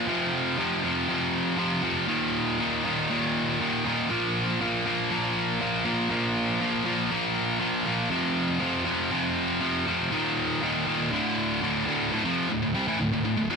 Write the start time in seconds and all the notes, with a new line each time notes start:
0.08 F2 C3 F3
0.58 F2 C3 F3
0.83 F2 C3 F3
1.08 F2 C3 F3
1.57 F2 C3 F3
1.83 F2 C3 F3
2.08 D#2 A#2 D#3
2.59 D#2 A#2 D#3
2.84 D#2 A#2 D#3
3.10 D#2 A#2 D#3
3.60 D#2 A#2 D#3
3.85 D#2 A#2 D#3
4.10 A#2 F3 A#3
4.61 A#2 F3 A#3
4.86 A#2 F3 A#3
5.11 A#2 F3 A#3
5.60 A#2 F3 A#3
5.85 A#2 F3 A#3
6.10 A#2 F3 A#3
6.60 A#2 F3 A#3
6.85 A#2 F3 A#3
7.10 A#2 F3 A#3
7.59 A#2 F3 A#3
7.85 A#2 F3 A#3
8.10 F2 C3 F3
8.60 F2 C3 F3
8.85 F2 C3 F3
9.11 F2 C3 F3
9.60 F2 C3 F3
9.86 F2 C3 F3
10.12 D#2 A#2 D#3
10.62 D#2 A#2 D#3
10.87 D#2 A#2 D#3
11.12 D2 A2 D3
11.62 D2 A2 D3
11.86 D2 A2 D3
12.12 D2 A2
12.24 F2 C3 F3
12.50 D2 A2
12.62 D2 A2
12.75 C3 G3
12.88 A2 E3
13.00 D2 A2
13.13 D2 A2
13.25 D2 A2
13.37 D2 A2
13.50 E2 B2 E3